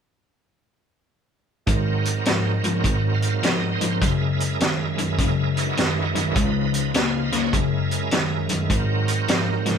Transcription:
1.66 G#2 D#3 F#3 C4 A#4, kick, closed hi-hat
2.05 closed hi-hat
2.25 G#2 F3, snare, closed hi-hat
2.64 G#2 F3, closed hi-hat
2.84 G#2 D#3, kick, closed hi-hat
3.14 F5
3.22 closed hi-hat
3.43 G#2 F3 D#5, snare, closed hi-hat
3.72 C5
3.81 G#2 F3, closed hi-hat
4.01 F#2 C#3 G#3 E4 A#4, kick, closed hi-hat
4.40 closed hi-hat
4.60 F#2 D#3, snare, closed hi-hat
4.98 F#2 D#3, closed hi-hat
5.18 F#2 C#3, kick, closed hi-hat
5.56 C#3 E3 D#4 F#4, closed hi-hat
5.77 F#2 D#3, snare, closed hi-hat
6.15 F#2 D#3, closed hi-hat
6.30 C#2 C#3
6.35 C#3 F3 G#3 D#4, kick, closed hi-hat
6.41 B4
6.74 closed hi-hat
6.94 C#3 A#3 G#5, snare, closed hi-hat
7.08 F5
7.23 D#5
7.32 C#3 A#3, snare, closed hi-hat
7.38 C#5
7.52 F#2 C#3 G#3 E4 A#4, kick, closed hi-hat
7.91 closed hi-hat
8.11 F#2 D#3, snare, closed hi-hat
8.49 F#2 D#3, closed hi-hat
8.65 G#2 D#3
8.70 G#2 D#3 F#3 C4, kick, closed hi-hat
8.76 A#4
9.08 closed hi-hat
9.28 G#2 F3, snare, closed hi-hat
9.66 G#2 F3, snare, closed hi-hat

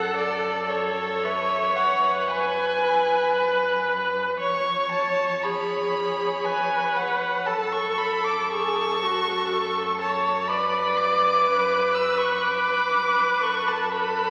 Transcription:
Already playing: F#2 A4 F#5
0.16 D5
0.70 C#5
1.24 B4 C#5 E5
1.77 F#5
2.29 B4 G#5
2.83 B4
4.40 F2 C#5 C#6
4.92 A5
5.44 G#4 B5
6.45 B4 G#5
6.97 F#5
7.46 F#2 A4 A5
7.73 C#6
7.98 B5
8.24 D6
8.49 G#4 C#6
9.02 F#4
9.52 A4
10.01 C#5 A5
10.48 B4 D5 B5
10.97 D6
11.47 B4
11.95 E6
12.18 C#6
12.43 D6
13.42 F#2 A4 C#6
13.68 A5
13.94 B5

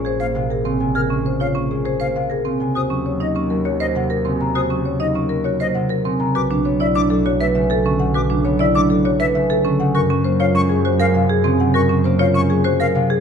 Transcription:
Already playing: A#1 G#3 A#3
0.05 G#4 C5
0.20 A#3 C5 F5
0.35 C3 F5
0.50 G#4 A#4
0.65 C#3 C4
0.80 C3 G#5
0.95 G#4 A#4 F6
1.10 G#3 C#4
1.26 C5
1.40 F4 C#5 F5
1.55 A#3 C#4
1.71 G#3 G#4
1.85 G#4 C5
2.00 A#3 C5 F5
2.15 C3 F5
2.30 G#4 A#4
2.45 C#3 C4
2.60 C3 G#5
2.75 D#2 F#4 C5 D#6
2.90 F#3 C#4
3.06 C#5
3.20 D#4 D#5
3.35 A#3 C#4
3.50 F#3 A#4
3.65 F#4 C#5
3.80 A#3 C5 D#5
3.95 C3 F#5
4.10 A#4
4.25 C#3 C4
4.40 C3 A#5
4.55 F#4 C5 D#6
4.70 F#3 C#4
4.85 C#5
5.00 D#4 D#5
5.15 A#3 C#4
5.29 F#3 A#4
5.44 F#4 C#5
5.60 A#3 C5 D#5
5.74 C3 F#5
5.90 A#4
6.05 C#3 C4
6.20 C3 A#5
6.35 B1 F#4 B4 D6
6.50 F#3 D4
6.65 B3 C#5
6.80 E4 D5 E5
6.95 A3 D4 D6
7.10 F#3 A4
7.26 F#4 C#5
7.40 A3 B4 E5
7.55 C#3 E5
7.70 A4
7.85 D3 C#4
7.99 C#3 F#5
8.14 F#4 B4 D6
8.30 F#3 D4
8.45 B3 C#5
8.59 E4 D5 E5
8.75 A3 D4 D6
8.90 F#3 A4
9.05 F#4 C#5
9.20 A3 B4 E5
9.35 C#3 E5
9.50 A4
9.65 D3 C#4
9.80 C#3 F#5
9.95 F#2 F#4 A#4 C#6
10.10 F#3 C#4
10.24 A#3 C5
10.40 F4 C#5 F5
10.55 G#3 C#4 C#6
10.69 F#3 G#4
10.85 F#4 C5
11.00 G#3 A#4 F5
11.14 C3 F5
11.29 G#4
11.44 C#3 C4
11.60 C3 F#5
11.74 F#4 A#4 C#6
11.89 F#3 C#4
12.04 A#3 C5
12.19 F4 C#5 F5
12.34 G#3 C#4 C#6
12.50 F#3 G#4
12.64 F#4 C5
12.80 G#3 A#4 F5
12.95 C3 F5
13.10 G#4

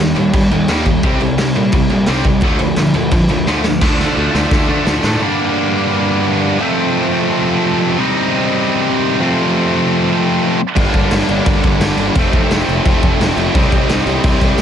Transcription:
0.00 D#2 D#3 G3
0.16 D#2 D#3 G3, crash
0.33 G2 D#3 G3, kick, crash
0.51 D#2 D#3 G3, crash
0.68 D#2 D#3 G3 A#3, snare, crash
0.85 D#3 G3, kick, crash
1.03 C2 C3 G3 C4, kick, crash
1.20 C2 C3 G3, crash
1.38 C2 C3 G3, snare, crash
1.55 A#2 C3 G3, crash
1.72 C2 C3 G3, kick, crash
1.90 A#2 C3 G3, crash
2.06 C2 C3 G3 C4, snare, crash
2.24 C2 C3 G3, kick, crash
2.41 D2 D3 F3 A3, kick, crash
2.59 D2 D3 F3, crash
2.76 D2 D3 F3, snare, crash
2.94 D2 D3 F3, crash
3.11 F2 D3 F3, kick, crash
3.29 D2 D3 F3, crash
3.46 D2 D3 F3 A3, snare
3.64 D3 F3, snare
3.81 D2 D3 F3 A3 D4, kick, snare, crash
3.98 D3 F3 A3 D4, snare
4.16 D2 D3 F3 A3 D4
4.34 D2 D3 F3 A3 D4, snare
4.51 D2 D3 F3 A3 D4, kick, snare
4.69 D3 F3 A3 D4
4.86 D2 D3 F3 A3 D4, snare
5.04 A2 D3 F3 A3 D4, snare
5.21 G2 D3 G3 A#3 D4
6.59 F2 C3 F3 A3 C4
7.98 C3 G3 C4 D#4
9.20 F2 C3 F3 A3 C4
10.76 G1 G2 D3 G3 A#3 D4, kick, crash
10.94 G1, kick, crash
11.10 G1, snare, crash
11.29 G1, crash
11.46 G1, kick, crash
11.64 G1, kick, crash
11.79 G1, snare, crash
11.98 G1, crash
12.15 F1 F2 C3 F3 A3 C4, kick, crash
12.33 F1, kick, crash
12.50 F1, snare, crash
12.68 F1, crash
12.85 F1, kick, crash
13.03 F1, kick, crash
13.20 F1, snare, crash
13.37 F1, crash
13.55 C2 C3 G3 C4 D#4, kick, crash
13.72 C2, kick, crash
13.89 C2, snare, crash
14.06 C2, crash
14.24 C2, kick, crash
14.41 C2, kick, crash
14.58 F1, snare, crash

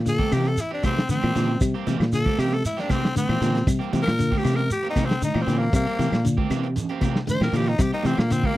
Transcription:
Already playing: A#2
0.06 D3 A4, closed hi-hat, shekere
0.18 A#3 C4 G4, kick, high conga
0.32 C3 E3 A#3 C4 G4, closed hi-hat, low conga, claves, shekere
0.45 A4, closed hi-hat
0.57 E4, closed hi-hat, shekere
0.71 C4 D4 G4, muted clean electric guitar stroke
0.83 C3 E3 A#3 C4 G4, muted clean electric guitar stroke, kick, snare, closed hi-hat, high conga, claves, shekere
0.97 snare, closed hi-hat
1.09 D3 C4, muted fingered electric bass stroke, closed hi-hat, high conga, low conga, shekere
1.22 A#2 E3 A#3 C4 G4, high conga, claves
1.34 A#2 D3 E3 A#3 C4 G4, closed hi-hat, low conga, shekere
1.61 C3 G3, kick, closed hi-hat, claves, shekere
1.74 A#3 C4 G4, closed hi-hat
1.86 C3 E3 A#3 C4 G4, snare, closed hi-hat, high conga, shekere
2.00 A#2, snare, closed hi-hat, claves
2.12 D3 A4, closed hi-hat, shekere
2.25 A#3 C4 G4, kick, high conga
2.38 C3 A#3 C4 G4, closed hi-hat, low conga, claves, shekere
2.51 A4, closed hi-hat, high conga
2.65 E4, closed hi-hat, shekere
2.77 A#3 C4 D4 G4, snare, closed hi-hat
2.89 C3 E3 A#3 C4 G4, kick, snare, closed hi-hat, high conga, claves, shekere
3.05 snare
3.16 D3 C4, muted fingered electric bass stroke, closed hi-hat, high conga, shekere
3.28 A#2 E3 A#3 C4 G4, closed hi-hat, high conga, claves
3.41 A#2 D3 E3 A#3 C4 G4, closed hi-hat, low conga, shekere
3.55 snare, closed hi-hat
3.67 C3 G3, kick, closed hi-hat, claves, shekere
3.79 A#3 C4 G4, closed hi-hat
3.92 C3 E3 A#3 C4 G4, closed hi-hat, high conga, shekere
4.03 A#4, closed hi-hat, claves
4.08 A#2, snare
4.19 D3, closed hi-hat, shekere
4.31 A#3 C4 G4, kick, high conga
4.38 G4
4.43 C3 E3 A#3 C4 G4, closed hi-hat, low conga, claves, shekere
4.55 A#4, closed hi-hat
4.71 G4, closed hi-hat, shekere
4.83 A#3 C4 G4
4.90 D#4
4.95 C3 E3 A#3 C4 G4, kick, snare, closed hi-hat, high conga, claves, shekere
5.06 C4
5.10 snare, closed hi-hat
5.22 D3 D#4, muted fingered electric bass stroke, closed hi-hat, high conga, shekere
5.34 A#2 E3 A#3 C4 G4, claves
5.42 C4
5.47 A#2 D3 E3 C4 G4, muted clean electric guitar stroke, closed hi-hat, low conga, shekere
5.58 A#3
5.73 C3 G3 A#3, kick, snare, closed hi-hat, claves, shekere
5.86 A#3 C4 G4, closed hi-hat
5.98 C3 E3 A#3 G4, closed hi-hat, high conga, shekere
6.12 A#2, snare, closed hi-hat, claves
6.25 D3, closed hi-hat, shekere
6.37 A#3 C4 G4, kick, high conga
6.50 C3 E3 A#3 C4 G4, snare, closed hi-hat, low conga, claves, shekere
6.63 closed hi-hat
6.76 closed hi-hat, low conga, shekere
6.89 A#3 C4 G4, closed hi-hat
7.01 C3 E3 A#3 C4 G4, kick, closed hi-hat, high conga, claves, shekere
7.16 snare
7.27 D3 C5, muted fingered electric bass stroke, closed hi-hat, high conga, low conga, shekere
7.40 A#2 E3 A#3 C4 G4 A#4, snare, closed hi-hat, high conga, claves
7.52 A#2 D3 E3 A#3 C4 G4, closed hi-hat, low conga, shekere
7.67 D#4, closed hi-hat
7.79 C3 G3 G4, kick, snare, closed hi-hat, claves, shekere
7.92 A#3 C4 D#4 G4, closed hi-hat
8.03 C3 E3 A#3 C4 G4, closed hi-hat, high conga, shekere
8.18 A#2 A#3, snare, closed hi-hat, claves
8.30 D3 C4, closed hi-hat, shekere
8.43 A#3 C4 G4, kick, high conga

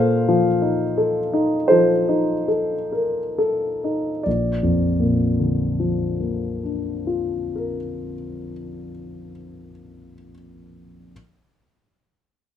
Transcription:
Already playing: A#2 A4 C5 F5
0.28 F3
0.62 D#4
0.98 A4
1.33 D#4
1.68 F3 A4 C5
2.09 D#4
2.48 A4
2.92 A#4
3.38 A4
3.84 D#4
4.23 A#1 D5
4.63 F2
5.00 A#2
5.39 D3
5.80 F3
6.20 A#3
6.63 D4
7.07 F4
7.56 A#4

